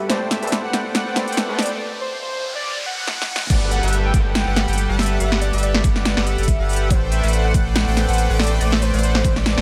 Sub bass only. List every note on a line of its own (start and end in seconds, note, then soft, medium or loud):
3.50 3.81 G1 loud
3.83 4.12 G1 loud
4.14 4.44 G1 loud
4.47 4.66 G1 loud
4.68 4.87 G1 loud
4.89 5.18 G1 medium
5.20 5.51 G1 loud
5.53 5.82 G1 loud
5.84 6.15 G1 medium
6.17 6.36 G1 loud
6.38 6.57 G1 loud
6.60 6.92 G1 loud
6.90 7.21 A1 loud
7.23 7.52 A1 loud
7.54 7.85 A1 loud
7.87 8.06 A1 loud
8.09 8.27 A1 loud
8.30 8.59 A1 loud
8.61 8.91 A1 loud
8.94 9.23 A1 loud
9.25 9.55 A1 loud
9.57 9.61 A1 loud